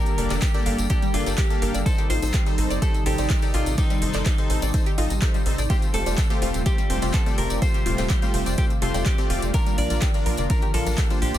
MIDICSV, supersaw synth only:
0, 0, Header, 1, 2, 480
1, 0, Start_track
1, 0, Tempo, 480000
1, 1860, Time_signature, 4, 2, 24, 8
1, 11380, End_track
2, 0, Start_track
2, 0, Title_t, "Supersaw synth"
2, 0, Program_c, 0, 81
2, 0, Note_on_c, 0, 58, 99
2, 0, Note_on_c, 0, 62, 94
2, 0, Note_on_c, 0, 67, 90
2, 0, Note_on_c, 0, 69, 92
2, 0, Note_on_c, 0, 74, 103
2, 153, Note_off_c, 0, 58, 0
2, 153, Note_off_c, 0, 62, 0
2, 153, Note_off_c, 0, 67, 0
2, 153, Note_off_c, 0, 69, 0
2, 153, Note_off_c, 0, 74, 0
2, 181, Note_on_c, 0, 58, 77
2, 181, Note_on_c, 0, 62, 71
2, 181, Note_on_c, 0, 67, 67
2, 181, Note_on_c, 0, 69, 70
2, 181, Note_on_c, 0, 74, 86
2, 286, Note_off_c, 0, 58, 0
2, 286, Note_off_c, 0, 62, 0
2, 286, Note_off_c, 0, 67, 0
2, 286, Note_off_c, 0, 69, 0
2, 286, Note_off_c, 0, 74, 0
2, 306, Note_on_c, 0, 62, 89
2, 306, Note_on_c, 0, 74, 101
2, 307, Note_on_c, 0, 58, 96
2, 307, Note_on_c, 0, 67, 83
2, 307, Note_on_c, 0, 69, 86
2, 443, Note_off_c, 0, 58, 0
2, 443, Note_off_c, 0, 62, 0
2, 443, Note_off_c, 0, 67, 0
2, 443, Note_off_c, 0, 69, 0
2, 443, Note_off_c, 0, 74, 0
2, 545, Note_on_c, 0, 58, 94
2, 545, Note_on_c, 0, 62, 90
2, 545, Note_on_c, 0, 67, 92
2, 545, Note_on_c, 0, 69, 92
2, 545, Note_on_c, 0, 74, 106
2, 643, Note_off_c, 0, 58, 0
2, 643, Note_off_c, 0, 62, 0
2, 643, Note_off_c, 0, 67, 0
2, 643, Note_off_c, 0, 69, 0
2, 643, Note_off_c, 0, 74, 0
2, 661, Note_on_c, 0, 58, 90
2, 661, Note_on_c, 0, 62, 87
2, 661, Note_on_c, 0, 67, 81
2, 661, Note_on_c, 0, 69, 79
2, 661, Note_on_c, 0, 74, 97
2, 866, Note_off_c, 0, 58, 0
2, 866, Note_off_c, 0, 62, 0
2, 866, Note_off_c, 0, 67, 0
2, 866, Note_off_c, 0, 69, 0
2, 866, Note_off_c, 0, 74, 0
2, 901, Note_on_c, 0, 58, 77
2, 901, Note_on_c, 0, 62, 71
2, 901, Note_on_c, 0, 67, 75
2, 901, Note_on_c, 0, 69, 73
2, 901, Note_on_c, 0, 74, 87
2, 1045, Note_off_c, 0, 58, 0
2, 1045, Note_off_c, 0, 62, 0
2, 1045, Note_off_c, 0, 67, 0
2, 1045, Note_off_c, 0, 69, 0
2, 1045, Note_off_c, 0, 74, 0
2, 1140, Note_on_c, 0, 58, 96
2, 1140, Note_on_c, 0, 62, 84
2, 1140, Note_on_c, 0, 67, 88
2, 1140, Note_on_c, 0, 69, 92
2, 1140, Note_on_c, 0, 74, 108
2, 1245, Note_off_c, 0, 58, 0
2, 1245, Note_off_c, 0, 67, 0
2, 1245, Note_off_c, 0, 69, 0
2, 1246, Note_off_c, 0, 62, 0
2, 1246, Note_off_c, 0, 74, 0
2, 1264, Note_on_c, 0, 69, 87
2, 1265, Note_on_c, 0, 58, 98
2, 1265, Note_on_c, 0, 62, 89
2, 1265, Note_on_c, 0, 67, 88
2, 1265, Note_on_c, 0, 74, 110
2, 1475, Note_off_c, 0, 58, 0
2, 1475, Note_off_c, 0, 62, 0
2, 1475, Note_off_c, 0, 67, 0
2, 1475, Note_off_c, 0, 69, 0
2, 1475, Note_off_c, 0, 74, 0
2, 1504, Note_on_c, 0, 58, 96
2, 1504, Note_on_c, 0, 62, 90
2, 1504, Note_on_c, 0, 67, 89
2, 1504, Note_on_c, 0, 69, 84
2, 1504, Note_on_c, 0, 77, 114
2, 1602, Note_off_c, 0, 69, 0
2, 1603, Note_off_c, 0, 58, 0
2, 1603, Note_off_c, 0, 62, 0
2, 1603, Note_off_c, 0, 67, 0
2, 1603, Note_off_c, 0, 77, 0
2, 1621, Note_on_c, 0, 58, 99
2, 1621, Note_on_c, 0, 62, 93
2, 1621, Note_on_c, 0, 67, 99
2, 1621, Note_on_c, 0, 69, 94
2, 1621, Note_on_c, 0, 77, 107
2, 1826, Note_off_c, 0, 58, 0
2, 1826, Note_off_c, 0, 62, 0
2, 1826, Note_off_c, 0, 67, 0
2, 1826, Note_off_c, 0, 69, 0
2, 1826, Note_off_c, 0, 77, 0
2, 1861, Note_on_c, 0, 63, 100
2, 1861, Note_on_c, 0, 69, 91
2, 1861, Note_on_c, 0, 72, 114
2, 2073, Note_off_c, 0, 63, 0
2, 2073, Note_off_c, 0, 69, 0
2, 2073, Note_off_c, 0, 72, 0
2, 2101, Note_on_c, 0, 63, 77
2, 2101, Note_on_c, 0, 69, 68
2, 2101, Note_on_c, 0, 72, 84
2, 2206, Note_off_c, 0, 63, 0
2, 2206, Note_off_c, 0, 69, 0
2, 2206, Note_off_c, 0, 72, 0
2, 2226, Note_on_c, 0, 63, 89
2, 2226, Note_on_c, 0, 69, 83
2, 2226, Note_on_c, 0, 72, 99
2, 2363, Note_off_c, 0, 63, 0
2, 2363, Note_off_c, 0, 69, 0
2, 2363, Note_off_c, 0, 72, 0
2, 2464, Note_on_c, 0, 63, 98
2, 2465, Note_on_c, 0, 69, 94
2, 2465, Note_on_c, 0, 72, 115
2, 2563, Note_off_c, 0, 63, 0
2, 2563, Note_off_c, 0, 69, 0
2, 2563, Note_off_c, 0, 72, 0
2, 2581, Note_on_c, 0, 63, 88
2, 2581, Note_on_c, 0, 69, 86
2, 2581, Note_on_c, 0, 72, 102
2, 2786, Note_off_c, 0, 63, 0
2, 2786, Note_off_c, 0, 69, 0
2, 2786, Note_off_c, 0, 72, 0
2, 2821, Note_on_c, 0, 63, 78
2, 2821, Note_on_c, 0, 69, 71
2, 2821, Note_on_c, 0, 72, 90
2, 2965, Note_off_c, 0, 63, 0
2, 2965, Note_off_c, 0, 69, 0
2, 2965, Note_off_c, 0, 72, 0
2, 3060, Note_on_c, 0, 63, 99
2, 3060, Note_on_c, 0, 69, 94
2, 3060, Note_on_c, 0, 72, 106
2, 3166, Note_off_c, 0, 63, 0
2, 3166, Note_off_c, 0, 69, 0
2, 3166, Note_off_c, 0, 72, 0
2, 3185, Note_on_c, 0, 63, 99
2, 3185, Note_on_c, 0, 72, 113
2, 3186, Note_on_c, 0, 69, 88
2, 3395, Note_off_c, 0, 63, 0
2, 3395, Note_off_c, 0, 69, 0
2, 3395, Note_off_c, 0, 72, 0
2, 3425, Note_on_c, 0, 63, 100
2, 3425, Note_on_c, 0, 69, 91
2, 3425, Note_on_c, 0, 74, 109
2, 3523, Note_off_c, 0, 63, 0
2, 3523, Note_off_c, 0, 69, 0
2, 3523, Note_off_c, 0, 74, 0
2, 3542, Note_on_c, 0, 63, 102
2, 3542, Note_on_c, 0, 69, 96
2, 3542, Note_on_c, 0, 74, 115
2, 3746, Note_off_c, 0, 63, 0
2, 3746, Note_off_c, 0, 69, 0
2, 3746, Note_off_c, 0, 74, 0
2, 3779, Note_on_c, 0, 69, 87
2, 3780, Note_on_c, 0, 63, 104
2, 3780, Note_on_c, 0, 72, 106
2, 3992, Note_off_c, 0, 63, 0
2, 3992, Note_off_c, 0, 69, 0
2, 3992, Note_off_c, 0, 72, 0
2, 4019, Note_on_c, 0, 72, 84
2, 4020, Note_on_c, 0, 63, 73
2, 4020, Note_on_c, 0, 69, 70
2, 4125, Note_off_c, 0, 72, 0
2, 4126, Note_off_c, 0, 63, 0
2, 4126, Note_off_c, 0, 69, 0
2, 4144, Note_on_c, 0, 69, 85
2, 4144, Note_on_c, 0, 72, 100
2, 4145, Note_on_c, 0, 63, 96
2, 4282, Note_off_c, 0, 63, 0
2, 4282, Note_off_c, 0, 69, 0
2, 4282, Note_off_c, 0, 72, 0
2, 4384, Note_on_c, 0, 63, 102
2, 4385, Note_on_c, 0, 69, 92
2, 4385, Note_on_c, 0, 72, 107
2, 4483, Note_off_c, 0, 63, 0
2, 4483, Note_off_c, 0, 69, 0
2, 4483, Note_off_c, 0, 72, 0
2, 4500, Note_on_c, 0, 63, 88
2, 4500, Note_on_c, 0, 69, 86
2, 4500, Note_on_c, 0, 72, 94
2, 4705, Note_off_c, 0, 63, 0
2, 4705, Note_off_c, 0, 69, 0
2, 4705, Note_off_c, 0, 72, 0
2, 4739, Note_on_c, 0, 63, 76
2, 4739, Note_on_c, 0, 69, 72
2, 4739, Note_on_c, 0, 72, 87
2, 4884, Note_off_c, 0, 63, 0
2, 4884, Note_off_c, 0, 69, 0
2, 4884, Note_off_c, 0, 72, 0
2, 4980, Note_on_c, 0, 63, 97
2, 4980, Note_on_c, 0, 69, 93
2, 4980, Note_on_c, 0, 75, 109
2, 5125, Note_off_c, 0, 63, 0
2, 5125, Note_off_c, 0, 69, 0
2, 5125, Note_off_c, 0, 75, 0
2, 5221, Note_on_c, 0, 63, 87
2, 5221, Note_on_c, 0, 69, 77
2, 5221, Note_on_c, 0, 72, 89
2, 5433, Note_off_c, 0, 63, 0
2, 5433, Note_off_c, 0, 69, 0
2, 5433, Note_off_c, 0, 72, 0
2, 5461, Note_on_c, 0, 63, 85
2, 5461, Note_on_c, 0, 69, 76
2, 5461, Note_on_c, 0, 72, 100
2, 5605, Note_off_c, 0, 63, 0
2, 5605, Note_off_c, 0, 69, 0
2, 5605, Note_off_c, 0, 72, 0
2, 5700, Note_on_c, 0, 57, 102
2, 5700, Note_on_c, 0, 60, 93
2, 5700, Note_on_c, 0, 65, 89
2, 5700, Note_on_c, 0, 67, 88
2, 5700, Note_on_c, 0, 72, 114
2, 5912, Note_off_c, 0, 60, 0
2, 5912, Note_off_c, 0, 65, 0
2, 5913, Note_off_c, 0, 57, 0
2, 5913, Note_off_c, 0, 67, 0
2, 5913, Note_off_c, 0, 72, 0
2, 5940, Note_on_c, 0, 57, 73
2, 5940, Note_on_c, 0, 60, 66
2, 5940, Note_on_c, 0, 65, 70
2, 5940, Note_on_c, 0, 67, 70
2, 5940, Note_on_c, 0, 72, 82
2, 6046, Note_off_c, 0, 57, 0
2, 6046, Note_off_c, 0, 60, 0
2, 6046, Note_off_c, 0, 65, 0
2, 6046, Note_off_c, 0, 67, 0
2, 6046, Note_off_c, 0, 72, 0
2, 6064, Note_on_c, 0, 57, 91
2, 6064, Note_on_c, 0, 60, 84
2, 6064, Note_on_c, 0, 65, 85
2, 6064, Note_on_c, 0, 67, 87
2, 6064, Note_on_c, 0, 72, 99
2, 6202, Note_off_c, 0, 57, 0
2, 6202, Note_off_c, 0, 60, 0
2, 6202, Note_off_c, 0, 65, 0
2, 6202, Note_off_c, 0, 67, 0
2, 6202, Note_off_c, 0, 72, 0
2, 6302, Note_on_c, 0, 65, 89
2, 6303, Note_on_c, 0, 57, 98
2, 6303, Note_on_c, 0, 60, 89
2, 6303, Note_on_c, 0, 67, 97
2, 6303, Note_on_c, 0, 72, 111
2, 6402, Note_off_c, 0, 57, 0
2, 6402, Note_off_c, 0, 60, 0
2, 6402, Note_off_c, 0, 65, 0
2, 6402, Note_off_c, 0, 67, 0
2, 6402, Note_off_c, 0, 72, 0
2, 6419, Note_on_c, 0, 57, 87
2, 6419, Note_on_c, 0, 60, 83
2, 6419, Note_on_c, 0, 65, 82
2, 6419, Note_on_c, 0, 67, 84
2, 6419, Note_on_c, 0, 72, 99
2, 6625, Note_off_c, 0, 57, 0
2, 6625, Note_off_c, 0, 60, 0
2, 6625, Note_off_c, 0, 65, 0
2, 6625, Note_off_c, 0, 67, 0
2, 6625, Note_off_c, 0, 72, 0
2, 6659, Note_on_c, 0, 57, 75
2, 6660, Note_on_c, 0, 60, 72
2, 6660, Note_on_c, 0, 65, 71
2, 6660, Note_on_c, 0, 67, 68
2, 6660, Note_on_c, 0, 72, 86
2, 6804, Note_off_c, 0, 57, 0
2, 6805, Note_off_c, 0, 60, 0
2, 6805, Note_off_c, 0, 65, 0
2, 6805, Note_off_c, 0, 67, 0
2, 6805, Note_off_c, 0, 72, 0
2, 6899, Note_on_c, 0, 60, 89
2, 6899, Note_on_c, 0, 65, 89
2, 6899, Note_on_c, 0, 67, 91
2, 6899, Note_on_c, 0, 72, 103
2, 6900, Note_on_c, 0, 57, 98
2, 7005, Note_off_c, 0, 57, 0
2, 7005, Note_off_c, 0, 60, 0
2, 7005, Note_off_c, 0, 65, 0
2, 7005, Note_off_c, 0, 67, 0
2, 7005, Note_off_c, 0, 72, 0
2, 7023, Note_on_c, 0, 57, 96
2, 7023, Note_on_c, 0, 60, 93
2, 7023, Note_on_c, 0, 65, 88
2, 7023, Note_on_c, 0, 67, 87
2, 7023, Note_on_c, 0, 72, 109
2, 7234, Note_off_c, 0, 57, 0
2, 7234, Note_off_c, 0, 60, 0
2, 7234, Note_off_c, 0, 65, 0
2, 7234, Note_off_c, 0, 67, 0
2, 7234, Note_off_c, 0, 72, 0
2, 7263, Note_on_c, 0, 57, 99
2, 7263, Note_on_c, 0, 60, 90
2, 7263, Note_on_c, 0, 65, 84
2, 7263, Note_on_c, 0, 67, 89
2, 7263, Note_on_c, 0, 74, 109
2, 7362, Note_off_c, 0, 57, 0
2, 7362, Note_off_c, 0, 60, 0
2, 7362, Note_off_c, 0, 65, 0
2, 7362, Note_off_c, 0, 67, 0
2, 7362, Note_off_c, 0, 74, 0
2, 7378, Note_on_c, 0, 57, 105
2, 7378, Note_on_c, 0, 60, 91
2, 7378, Note_on_c, 0, 65, 91
2, 7378, Note_on_c, 0, 67, 98
2, 7378, Note_on_c, 0, 74, 110
2, 7584, Note_off_c, 0, 57, 0
2, 7585, Note_off_c, 0, 60, 0
2, 7585, Note_off_c, 0, 65, 0
2, 7585, Note_off_c, 0, 67, 0
2, 7585, Note_off_c, 0, 74, 0
2, 7619, Note_on_c, 0, 57, 103
2, 7619, Note_on_c, 0, 60, 89
2, 7619, Note_on_c, 0, 65, 93
2, 7619, Note_on_c, 0, 72, 103
2, 7620, Note_on_c, 0, 67, 87
2, 7832, Note_off_c, 0, 57, 0
2, 7832, Note_off_c, 0, 60, 0
2, 7832, Note_off_c, 0, 65, 0
2, 7832, Note_off_c, 0, 67, 0
2, 7832, Note_off_c, 0, 72, 0
2, 7859, Note_on_c, 0, 60, 69
2, 7860, Note_on_c, 0, 57, 75
2, 7860, Note_on_c, 0, 65, 70
2, 7860, Note_on_c, 0, 67, 69
2, 7860, Note_on_c, 0, 72, 84
2, 7965, Note_off_c, 0, 60, 0
2, 7965, Note_off_c, 0, 65, 0
2, 7966, Note_off_c, 0, 57, 0
2, 7966, Note_off_c, 0, 67, 0
2, 7966, Note_off_c, 0, 72, 0
2, 7984, Note_on_c, 0, 57, 90
2, 7984, Note_on_c, 0, 60, 85
2, 7984, Note_on_c, 0, 65, 82
2, 7984, Note_on_c, 0, 67, 85
2, 7984, Note_on_c, 0, 72, 107
2, 8122, Note_off_c, 0, 57, 0
2, 8122, Note_off_c, 0, 60, 0
2, 8122, Note_off_c, 0, 65, 0
2, 8122, Note_off_c, 0, 67, 0
2, 8122, Note_off_c, 0, 72, 0
2, 8224, Note_on_c, 0, 60, 90
2, 8224, Note_on_c, 0, 65, 96
2, 8224, Note_on_c, 0, 72, 108
2, 8225, Note_on_c, 0, 57, 104
2, 8225, Note_on_c, 0, 67, 90
2, 8323, Note_off_c, 0, 57, 0
2, 8323, Note_off_c, 0, 60, 0
2, 8323, Note_off_c, 0, 65, 0
2, 8323, Note_off_c, 0, 67, 0
2, 8323, Note_off_c, 0, 72, 0
2, 8340, Note_on_c, 0, 57, 88
2, 8341, Note_on_c, 0, 60, 86
2, 8341, Note_on_c, 0, 65, 85
2, 8341, Note_on_c, 0, 67, 79
2, 8341, Note_on_c, 0, 72, 105
2, 8546, Note_off_c, 0, 57, 0
2, 8546, Note_off_c, 0, 60, 0
2, 8546, Note_off_c, 0, 65, 0
2, 8546, Note_off_c, 0, 67, 0
2, 8546, Note_off_c, 0, 72, 0
2, 8579, Note_on_c, 0, 67, 67
2, 8579, Note_on_c, 0, 72, 81
2, 8580, Note_on_c, 0, 57, 76
2, 8580, Note_on_c, 0, 60, 70
2, 8580, Note_on_c, 0, 65, 69
2, 8724, Note_off_c, 0, 67, 0
2, 8724, Note_off_c, 0, 72, 0
2, 8725, Note_off_c, 0, 57, 0
2, 8725, Note_off_c, 0, 60, 0
2, 8725, Note_off_c, 0, 65, 0
2, 8819, Note_on_c, 0, 57, 95
2, 8820, Note_on_c, 0, 60, 88
2, 8820, Note_on_c, 0, 65, 89
2, 8820, Note_on_c, 0, 67, 92
2, 8820, Note_on_c, 0, 72, 108
2, 8925, Note_off_c, 0, 57, 0
2, 8925, Note_off_c, 0, 60, 0
2, 8925, Note_off_c, 0, 65, 0
2, 8925, Note_off_c, 0, 67, 0
2, 8925, Note_off_c, 0, 72, 0
2, 8943, Note_on_c, 0, 60, 93
2, 8943, Note_on_c, 0, 72, 108
2, 8944, Note_on_c, 0, 57, 97
2, 8944, Note_on_c, 0, 65, 91
2, 8944, Note_on_c, 0, 67, 95
2, 9154, Note_off_c, 0, 57, 0
2, 9154, Note_off_c, 0, 60, 0
2, 9154, Note_off_c, 0, 65, 0
2, 9154, Note_off_c, 0, 67, 0
2, 9154, Note_off_c, 0, 72, 0
2, 9184, Note_on_c, 0, 57, 96
2, 9184, Note_on_c, 0, 60, 90
2, 9184, Note_on_c, 0, 65, 93
2, 9184, Note_on_c, 0, 67, 91
2, 9184, Note_on_c, 0, 74, 108
2, 9283, Note_off_c, 0, 57, 0
2, 9283, Note_off_c, 0, 60, 0
2, 9283, Note_off_c, 0, 65, 0
2, 9283, Note_off_c, 0, 67, 0
2, 9283, Note_off_c, 0, 74, 0
2, 9300, Note_on_c, 0, 57, 105
2, 9301, Note_on_c, 0, 60, 95
2, 9301, Note_on_c, 0, 65, 94
2, 9301, Note_on_c, 0, 67, 91
2, 9301, Note_on_c, 0, 74, 113
2, 9506, Note_off_c, 0, 57, 0
2, 9506, Note_off_c, 0, 60, 0
2, 9506, Note_off_c, 0, 65, 0
2, 9506, Note_off_c, 0, 67, 0
2, 9506, Note_off_c, 0, 74, 0
2, 9541, Note_on_c, 0, 62, 100
2, 9541, Note_on_c, 0, 65, 89
2, 9541, Note_on_c, 0, 70, 114
2, 9753, Note_off_c, 0, 62, 0
2, 9753, Note_off_c, 0, 65, 0
2, 9753, Note_off_c, 0, 70, 0
2, 9780, Note_on_c, 0, 62, 78
2, 9780, Note_on_c, 0, 65, 71
2, 9781, Note_on_c, 0, 70, 82
2, 9886, Note_off_c, 0, 62, 0
2, 9886, Note_off_c, 0, 65, 0
2, 9886, Note_off_c, 0, 70, 0
2, 9905, Note_on_c, 0, 62, 90
2, 9905, Note_on_c, 0, 65, 85
2, 9905, Note_on_c, 0, 70, 100
2, 10042, Note_off_c, 0, 62, 0
2, 10043, Note_off_c, 0, 65, 0
2, 10043, Note_off_c, 0, 70, 0
2, 10144, Note_on_c, 0, 62, 101
2, 10144, Note_on_c, 0, 70, 112
2, 10145, Note_on_c, 0, 65, 87
2, 10243, Note_off_c, 0, 62, 0
2, 10243, Note_off_c, 0, 65, 0
2, 10243, Note_off_c, 0, 70, 0
2, 10262, Note_on_c, 0, 62, 89
2, 10262, Note_on_c, 0, 65, 84
2, 10262, Note_on_c, 0, 70, 102
2, 10466, Note_off_c, 0, 62, 0
2, 10466, Note_off_c, 0, 70, 0
2, 10467, Note_off_c, 0, 65, 0
2, 10501, Note_on_c, 0, 65, 73
2, 10501, Note_on_c, 0, 70, 83
2, 10502, Note_on_c, 0, 62, 79
2, 10645, Note_off_c, 0, 65, 0
2, 10645, Note_off_c, 0, 70, 0
2, 10646, Note_off_c, 0, 62, 0
2, 10741, Note_on_c, 0, 62, 94
2, 10741, Note_on_c, 0, 70, 114
2, 10742, Note_on_c, 0, 65, 92
2, 10846, Note_off_c, 0, 62, 0
2, 10846, Note_off_c, 0, 65, 0
2, 10846, Note_off_c, 0, 70, 0
2, 10866, Note_on_c, 0, 62, 93
2, 10866, Note_on_c, 0, 65, 93
2, 10866, Note_on_c, 0, 70, 107
2, 11075, Note_off_c, 0, 65, 0
2, 11075, Note_off_c, 0, 70, 0
2, 11076, Note_off_c, 0, 62, 0
2, 11105, Note_on_c, 0, 65, 90
2, 11105, Note_on_c, 0, 72, 105
2, 11106, Note_on_c, 0, 62, 99
2, 11203, Note_off_c, 0, 65, 0
2, 11203, Note_off_c, 0, 72, 0
2, 11204, Note_off_c, 0, 62, 0
2, 11220, Note_on_c, 0, 72, 112
2, 11221, Note_on_c, 0, 62, 105
2, 11221, Note_on_c, 0, 65, 93
2, 11380, Note_off_c, 0, 62, 0
2, 11380, Note_off_c, 0, 65, 0
2, 11380, Note_off_c, 0, 72, 0
2, 11380, End_track
0, 0, End_of_file